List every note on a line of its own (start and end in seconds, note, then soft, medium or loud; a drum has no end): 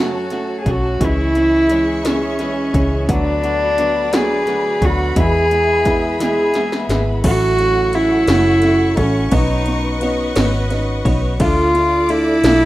0.00 0.14 F#2 medium
0.00 0.62 F#2 medium
0.00 0.14 C#3 medium
0.00 0.14 F#3 medium
0.00 0.23 F#3 medium
0.00 0.14 A3 medium
0.00 0.23 A3 medium
0.00 0.13 C#4 medium
0.00 0.23 C#4 medium
0.00 0.12 F#4 medium
0.00 0.60 F#4 medium
0.00 0.98 F#4 medium
0.00 0.98 C#5 medium
0.00 0.98 A5 medium
0.14 0.30 F#3 soft
0.14 0.30 A3 soft
0.14 0.31 C#4 soft
0.14 0.31 F#4 soft
0.30 0.65 F#3 soft
0.30 0.57 F#3 medium
0.30 0.57 A3 medium
0.30 0.65 A3 soft
0.30 0.57 C#4 medium
0.30 0.66 C#4 medium
0.30 0.67 F#4 medium
0.30 snare soft
0.30 closed hi-hat soft
0.60 0.72 G#4 medium
0.66 0.98 B1 medium
0.66 1.00 F#3 medium
0.66 0.92 F#3 medium
0.66 0.92 A3 medium
0.66 1.01 A3 medium
0.66 0.92 C#4 medium
0.66 1.01 C#4 medium
0.66 1.02 F#4 medium
0.66 kick medium
0.66 closed hi-hat soft
0.70 1.06 F#4 medium
0.99 2.70 C#2 medium
0.99 1.18 C#3 medium
0.99 1.27 E3 medium
0.99 1.18 E3 medium
0.99 1.27 G#3 medium
0.99 1.18 G#3 medium
0.99 1.27 C#4 medium
0.99 1.18 C#4 medium
0.99 1.17 E4 medium
0.99 3.06 G#4 medium
0.99 3.06 E5 medium
0.99 3.06 C#6 medium
0.99 kick medium
0.99 closed hi-hat medium
1.04 2.10 E4 loud
1.18 1.35 G#3 soft
1.18 1.36 C#4 soft
1.18 1.35 E4 soft
1.35 1.68 E3 soft
1.35 1.62 E3 medium
1.35 1.69 G#3 soft
1.35 1.62 G#3 medium
1.35 1.62 C#4 medium
1.35 1.70 C#4 medium
1.35 1.70 E4 medium
1.35 closed hi-hat soft
1.69 2.04 E3 soft
1.69 1.96 E3 medium
1.69 2.04 G#3 soft
1.69 1.97 G#3 medium
1.69 2.04 C#4 medium
1.69 1.97 C#4 medium
1.69 2.05 E4 soft
1.69 closed hi-hat medium
2.04 2.22 C#3 medium
2.04 2.22 E3 medium
2.04 2.31 E3 medium
2.04 2.22 G#3 medium
2.04 2.31 G#3 medium
2.04 2.22 C#4 medium
2.04 2.31 C#4 medium
2.04 2.20 E4 medium
2.04 snare medium
2.04 closed hi-hat medium
2.09 3.11 C#4 medium
2.21 2.39 G#3 soft
2.21 2.39 C#4 soft
2.21 2.39 E4 soft
2.39 2.72 E3 soft
2.39 2.66 E3 medium
2.39 2.73 G#3 medium
2.39 2.66 G#3 medium
2.39 2.74 C#4 medium
2.39 2.66 C#4 medium
2.39 2.75 E4 medium
2.39 snare soft
2.39 closed hi-hat soft
2.73 3.07 C#2 medium
2.73 3.08 E3 medium
2.73 3.00 E3 medium
2.73 3.09 G#3 medium
2.73 3.01 G#3 medium
2.73 3.09 C#4 medium
2.73 3.01 C#4 medium
2.73 3.10 E4 medium
2.73 kick medium
2.73 closed hi-hat soft
3.07 4.78 D2 medium
3.07 3.26 D3 medium
3.07 3.35 F#3 medium
3.07 3.26 A3 medium
3.07 3.25 B3 medium
3.07 3.35 B3 medium
3.07 3.36 D4 medium
3.07 5.14 F#4 medium
3.07 3.24 F#4 medium
3.07 5.14 D5 medium
3.07 7.20 B5 medium
3.07 kick loud
3.07 closed hi-hat medium
3.13 4.18 D4 loud
3.25 3.42 A3 soft
3.25 3.43 B3 soft
3.25 3.43 F#4 medium
3.43 3.76 D3 soft
3.43 3.69 F#3 medium
3.43 3.77 A3 medium
3.43 3.70 B3 medium
3.43 3.78 B3 medium
3.43 3.70 D4 medium
3.43 3.79 F#4 medium
3.43 closed hi-hat soft
3.77 4.11 D3 medium
3.77 4.04 F#3 medium
3.77 4.11 A3 medium
3.77 4.04 B3 medium
3.77 4.12 B3 medium
3.77 4.05 D4 medium
3.77 4.12 F#4 medium
3.77 closed hi-hat medium
4.12 4.29 D3 medium
4.12 4.39 F#3 medium
4.12 4.30 A3 medium
4.12 4.29 B3 medium
4.12 4.39 B3 medium
4.12 4.39 D4 medium
4.12 4.28 F#4 medium
4.12 snare loud
4.12 closed hi-hat medium
4.16 4.86 G#4 medium
4.29 4.46 A3 soft
4.29 4.47 B3 soft
4.29 4.47 F#4 soft
4.46 4.79 D3 medium
4.46 4.73 F#3 medium
4.46 4.80 A3 medium
4.46 4.74 B3 medium
4.46 4.81 B3 medium
4.46 4.74 D4 medium
4.46 4.81 F#4 medium
4.46 snare soft
4.46 closed hi-hat soft
4.80 5.14 D2 medium
4.80 5.16 D3 medium
4.80 5.08 F#3 medium
4.80 5.16 A3 medium
4.80 5.16 B3 medium
4.80 5.08 B3 medium
4.80 5.08 D4 medium
4.80 5.17 F#4 medium
4.80 kick medium
4.80 closed hi-hat soft
4.85 5.21 F#4 loud
5.15 5.33 E2 medium
5.15 6.86 E2 medium
5.15 5.34 B2 medium
5.15 5.34 E3 medium
5.15 5.43 G#3 medium
5.15 5.33 G#3 medium
5.15 5.43 B3 medium
5.15 5.33 B3 medium
5.15 5.43 E4 loud
5.15 5.32 E4 medium
5.15 7.22 G#4 medium
5.15 7.22 E5 medium
5.15 kick loud
5.15 closed hi-hat medium
5.20 6.22 G#4 loud
5.33 5.50 E3 soft
5.33 5.51 B3 medium
5.33 5.51 E4 medium
5.51 5.84 E3 medium
5.51 5.77 G#3 medium
5.51 5.85 G#3 medium
5.51 5.78 B3 medium
5.51 5.85 B3 medium
5.51 5.78 E4 medium
5.51 5.86 E4 medium
5.51 closed hi-hat soft
5.85 6.19 E3 medium
5.85 6.12 G#3 medium
5.85 6.19 G#3 medium
5.85 6.12 B3 medium
5.85 6.20 B3 medium
5.85 6.12 E4 medium
5.85 6.20 E4 medium
5.85 kick medium
5.85 closed hi-hat medium
6.19 6.37 E2 medium
6.19 6.37 B2 medium
6.19 6.38 E3 medium
6.19 6.37 G#3 medium
6.19 6.47 G#3 medium
6.19 6.37 B3 medium
6.19 6.47 B3 medium
6.19 6.36 E4 medium
6.19 6.47 E4 medium
6.19 6.96 G#4 medium
6.19 snare medium
6.19 closed hi-hat medium
6.37 6.53 E3 soft
6.37 6.54 G#3 soft
6.37 6.55 B3 soft
6.37 6.55 E4 medium
6.54 6.88 E3 medium
6.54 6.89 G#3 medium
6.54 6.82 G#3 medium
6.54 6.89 B3 medium
6.54 6.82 B3 medium
6.54 6.82 E4 medium
6.54 6.90 E4 medium
6.54 snare medium
6.54 closed hi-hat soft
6.72 snare medium
6.89 7.22 G#1 medium
6.89 7.24 E3 medium
6.89 7.24 G#3 medium
6.89 7.16 G#3 medium
6.89 7.16 B3 medium
6.89 7.25 B3 medium
6.89 7.16 E4 medium
6.89 7.24 E4 medium
6.89 snare medium
6.89 closed hi-hat soft
7.23 8.24 A1 medium
7.23 7.93 A2 medium
7.23 7.93 F#3 medium
7.23 7.50 A3 medium
7.23 7.93 A3 medium
7.23 7.50 C#4 medium
7.23 7.95 C#4 loud
7.23 7.94 E4 medium
7.23 7.50 F#4 loud
7.23 7.96 F#4 loud
7.23 9.30 A4 medium
7.23 9.29 F#5 medium
7.23 11.35 C#6 medium
7.23 kick loud
7.23 crash medium
7.23 ride medium
7.59 7.85 A3 medium
7.59 7.85 C#4 medium
7.59 7.85 F#4 medium
7.59 ride soft
7.93 8.28 F#3 medium
7.93 8.20 A3 medium
7.93 8.28 A3 soft
7.93 8.20 C#4 medium
7.93 8.27 C#4 medium
7.93 9.00 E4 loud
7.93 8.27 E4 medium
7.93 8.20 F#4 medium
7.93 ride soft
8.28 8.93 F#1 loud
8.28 8.98 A2 medium
8.28 9.00 F#3 medium
8.28 8.98 A3 medium
8.28 8.55 A3 medium
8.28 8.98 C#4 medium
8.28 8.55 C#4 medium
8.28 8.96 E4 medium
8.28 8.55 F#4 medium
8.28 snare loud
8.28 ride medium
8.62 8.89 A3 medium
8.62 8.89 C#4 medium
8.62 8.90 F#4 medium
8.62 snare soft
8.62 ride soft
8.97 9.30 A1 medium
8.97 9.23 A3 medium
8.97 9.32 A3 soft
8.97 9.24 C#4 medium
8.97 9.35 C#4 medium
8.97 9.32 C#4 medium
8.97 9.32 E4 medium
8.97 9.24 F#4 medium
8.97 kick medium
8.97 ride soft
9.31 10.32 B1 medium
9.31 9.99 B3 medium
9.31 9.58 B3 medium
9.31 9.58 C#4 medium
9.31 10.00 D#4 medium
9.31 10.10 D#4 medium
9.31 9.59 D#4 loud
9.31 10.01 F#4 medium
9.31 11.38 B4 medium
9.31 10.02 C#5 medium
9.31 11.38 D#5 medium
9.31 kick loud
9.31 ride medium
9.66 9.93 B3 medium
9.66 9.93 C#4 medium
9.66 9.93 D#4 medium
9.66 ride soft
10.01 10.36 B3 medium
10.01 10.28 B3 medium
10.01 10.28 C#4 medium
10.01 10.35 D#4 medium
10.01 10.28 D#4 medium
10.01 10.35 F#4 medium
10.01 10.34 C#5 medium
10.01 ride soft
10.35 11.01 G#1 medium
10.35 10.62 B3 medium
10.35 11.06 B3 medium
10.35 10.62 C#4 medium
10.35 10.62 D#4 medium
10.35 11.06 D#4 medium
10.35 11.05 F#4 medium
10.35 11.04 C#5 medium
10.35 snare loud
10.35 ride medium
10.70 10.96 B3 medium
10.70 10.96 C#4 medium
10.70 10.97 D#4 medium
10.70 snare soft
10.70 ride soft
11.05 11.38 B1 medium
11.05 11.32 B3 medium
11.05 11.32 C#4 medium
11.05 11.32 D#4 medium
11.05 11.40 D#4 medium
11.05 11.40 F#4 medium
11.05 11.40 C#5 medium
11.05 kick medium
11.05 ride soft
11.39 12.40 D2 medium
11.39 12.09 D3 medium
11.39 11.66 A3 medium
11.39 12.08 A3 medium
11.39 11.66 D4 medium
11.39 12.10 D4 medium
11.39 11.66 F4 loud
11.39 12.10 F4 loud
11.39 12.11 F4 loud
11.39 12.65 A4 medium
11.39 12.65 D5 medium
11.39 12.65 D6 medium
11.39 kick loud
11.39 ride medium
11.74 12.00 A3 medium
11.74 12.01 D4 medium
11.74 12.01 F4 medium
11.74 ride soft
12.09 12.44 D3 medium
12.09 12.35 A3 medium
12.09 12.44 A3 medium
12.09 12.35 D4 medium
12.09 12.44 D4 medium
12.09 12.65 E4 loud
12.09 12.35 F4 medium
12.09 ride soft
12.44 12.65 B1 medium
12.44 12.65 D3 medium
12.44 12.65 A3 medium
12.44 12.65 D4 medium
12.44 12.65 F4 medium
12.44 snare loud
12.44 ride medium